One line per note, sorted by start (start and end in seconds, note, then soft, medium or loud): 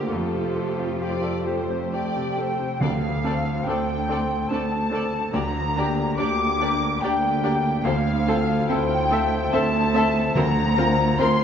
0.00 0.10 D2 medium
0.00 0.13 D3 soft
0.00 0.13 D3 medium
0.00 0.13 A#3 soft
0.00 0.14 A#3 soft
0.00 0.13 C4 soft
0.00 0.10 F4 medium
0.00 0.13 F4 soft
0.00 3.71 F4 soft
0.00 0.11 A#4 soft
0.00 0.13 A#4 soft
0.00 0.40 C5 soft
0.00 1.88 C5 medium
0.09 2.59 F2 soft
0.09 2.77 F2 soft
0.09 4.01 F3 medium
0.09 2.56 A3 soft
0.09 1.92 F4 medium
0.09 2.56 G4 soft
0.09 0.91 A4 soft
0.35 0.69 C3 soft
0.41 0.99 C5 soft
0.56 0.91 A3 soft
0.70 1.21 D5 soft
0.78 1.14 C4 soft
1.00 1.37 G4 soft
1.00 1.60 C5 soft
1.00 1.43 D5 medium
1.23 1.60 A4 soft
1.30 1.83 D5 soft
1.46 1.83 G4 soft
1.46 1.93 C5 soft
1.62 3.44 C5 soft
1.70 2.06 C4 soft
1.92 2.29 A3 soft
1.92 2.51 G4 soft
1.92 2.37 D5 soft
1.92 2.82 G5 medium
1.92 2.76 G5 medium
2.16 2.51 C3 soft
2.23 3.01 A3 soft
2.38 2.72 A3 soft
2.38 2.82 C5 soft
2.52 2.84 G4 soft
2.59 2.80 C3 soft
2.80 3.56 D2 medium
2.80 3.22 D2 medium
2.80 4.04 D3 medium
2.80 5.33 D3 medium
2.80 2.88 C4 soft
2.80 2.88 D4 medium
2.80 2.91 A4 medium
2.80 2.91 D5 medium
2.80 3.65 F5 medium
2.80 3.67 F5 medium
3.02 4.49 A3 soft
3.24 3.62 A3 soft
3.24 3.32 C4 soft
3.24 3.63 C4 soft
3.24 3.32 D4 soft
3.24 3.65 A4 soft
3.24 3.63 A4 soft
3.24 3.36 A4 soft
3.24 3.35 D5 soft
3.45 5.37 C5 soft
3.63 4.40 D2 medium
3.63 3.74 C4 medium
3.63 3.74 D4 medium
3.63 4.27 A4 soft
3.63 4.50 G5 medium
3.67 4.05 A3 soft
3.67 4.05 C4 soft
3.67 4.05 A4 soft
3.67 3.77 A4 medium
3.67 3.78 D5 medium
3.87 5.37 A5 soft
4.08 4.46 A3 soft
4.08 4.16 C4 medium
4.08 4.46 C4 soft
4.08 4.16 D4 soft
4.08 4.47 A4 soft
4.08 4.19 A4 soft
4.08 4.19 D5 medium
4.08 5.37 C6 soft
4.29 5.37 A4 soft
4.49 5.24 D2 medium
4.49 4.91 A3 soft
4.49 4.88 A3 soft
4.49 4.58 C4 medium
4.49 4.88 C4 soft
4.49 4.58 D4 medium
4.49 4.89 A4 soft
4.49 4.61 D5 soft
4.49 5.31 A5 medium
4.49 5.33 A5 medium
4.53 4.61 A4 medium
4.71 5.12 D4 soft
4.91 5.29 A3 soft
4.91 5.37 A3 soft
4.91 4.99 C4 soft
4.91 5.29 C4 soft
4.91 4.99 D4 medium
4.91 5.30 A4 soft
4.95 5.03 A4 medium
4.95 5.03 D5 medium
5.13 7.43 D4 soft
5.31 5.75 D2 medium
5.31 6.08 D2 medium
5.31 6.56 D3 medium
5.31 7.84 D3 medium
5.31 5.41 A#3 medium
5.31 5.40 D4 medium
5.31 5.42 G4 medium
5.31 5.42 D5 medium
5.31 6.19 A#5 medium
5.31 6.18 A#5 medium
5.55 7.22 A#3 soft
5.76 5.84 A#3 medium
5.76 6.15 A#3 soft
5.76 5.84 D4 soft
5.76 6.15 D4 soft
5.76 5.85 G4 soft
5.76 6.19 G4 medium
5.76 6.16 G4 soft
5.76 5.86 D5 soft
5.99 6.81 A#4 medium
6.16 6.92 D2 medium
6.16 6.26 A#3 medium
6.16 6.57 A#3 soft
6.16 6.26 D4 medium
6.16 6.57 D4 soft
6.16 6.28 G4 medium
6.16 7.02 G4 medium
6.16 6.57 G4 soft
6.16 6.27 D5 medium
6.16 6.99 D6 loud
6.16 7.02 D6 medium
6.41 7.89 G5 medium
6.60 6.68 A#3 medium
6.60 6.99 A#3 soft
6.60 6.68 D4 medium
6.60 6.99 D4 soft
6.60 6.69 G4 medium
6.60 6.99 G4 medium
6.60 6.70 D5 medium
6.60 7.89 A#5 medium
6.82 7.89 A#4 medium
7.00 7.75 D2 medium
7.00 7.76 D2 medium
7.00 7.10 A#3 medium
7.00 7.40 A#3 soft
7.00 7.11 D4 medium
7.00 7.40 D4 soft
7.00 7.89 G4 medium
7.00 7.12 G4 medium
7.00 7.12 D5 medium
7.00 7.82 G5 medium
7.00 7.85 G5 medium
7.04 7.41 G4 medium
7.23 7.63 A#3 medium
7.43 7.51 A#3 medium
7.43 7.81 A#3 soft
7.43 7.81 D4 soft
7.43 7.52 D4 medium
7.43 7.89 D4 soft
7.43 7.52 G4 medium
7.43 7.81 G4 soft
7.43 7.51 D5 medium
7.64 7.88 A#3 soft
7.82 8.59 D2 medium
7.82 8.26 D2 medium
7.82 8.60 D2 medium
7.82 10.37 D3 medium
7.82 7.92 E3 medium
7.82 7.92 C4 medium
7.82 7.93 A4 medium
7.82 7.94 C5 medium
7.82 8.39 F5 medium
7.82 8.69 F5 medium
8.06 9.73 C4 soft
8.27 8.35 C4 medium
8.27 8.66 C4 medium
8.27 9.53 F4 medium
8.27 8.35 F4 medium
8.27 8.66 F4 medium
8.27 8.35 A4 medium
8.27 8.66 A4 medium
8.27 8.36 C5 medium
8.48 10.40 A4 medium
8.68 9.43 D2 medium
8.68 8.77 C4 medium
8.68 9.07 C4 medium
8.68 8.77 E4 medium
8.68 9.07 E4 soft
8.68 8.77 A4 medium
8.68 9.08 A4 medium
8.68 9.32 C5 medium
8.68 8.78 C5 medium
8.68 9.53 G5 loud
8.68 9.53 G5 medium
8.91 11.40 F5 medium
9.10 9.19 C4 medium
9.10 9.49 C4 soft
9.10 9.18 A4 medium
9.10 9.50 A4 medium
9.10 9.18 C5 medium
9.10 9.19 E5 medium
9.10 9.50 E5 medium
9.10 10.40 A5 medium
9.33 11.19 C5 medium
9.51 10.26 D2 medium
9.51 10.27 D2 medium
9.51 9.60 C4 medium
9.51 9.91 C4 medium
9.51 10.78 F4 medium
9.51 9.61 A4 medium
9.51 9.92 A4 medium
9.51 9.61 C5 medium
9.51 9.61 E5 medium
9.51 9.91 E5 medium
9.51 10.35 A5 medium
9.51 10.37 A5 loud
9.74 10.16 C4 medium
9.93 10.40 A3 medium
9.93 10.01 C4 medium
9.93 10.33 C4 soft
9.93 10.03 A4 medium
9.93 10.34 A4 medium
9.93 10.02 C5 medium
9.93 10.01 E5 medium
9.93 10.33 E5 medium
10.17 10.57 C4 medium
10.35 11.09 D2 medium
10.35 10.77 D2 medium
10.35 11.10 D2 medium
10.35 11.44 D3 medium
10.35 10.44 C4 medium
10.35 10.44 F4 medium
10.35 10.44 A#4 medium
10.35 10.43 C5 medium
10.35 11.18 A#5 loud
10.35 11.21 A#5 medium
10.58 11.44 C4 medium
10.77 10.85 C4 medium
10.77 11.16 C4 medium
10.77 10.85 F4 medium
10.77 11.16 F4 medium
10.77 11.44 F4 medium
10.77 10.86 A#4 medium
10.77 11.16 A#4 medium
10.77 10.85 C5 medium
10.99 11.44 A#4 medium
11.18 11.44 D2 medium
11.18 11.26 C4 medium
11.18 11.44 C4 medium
11.18 11.26 F4 medium
11.18 11.44 F4 medium
11.18 11.27 A#4 medium
11.18 11.44 A#4 medium
11.18 11.27 C5 medium
11.18 11.44 C5 medium
11.18 11.44 C6 loud
11.18 11.44 C6 medium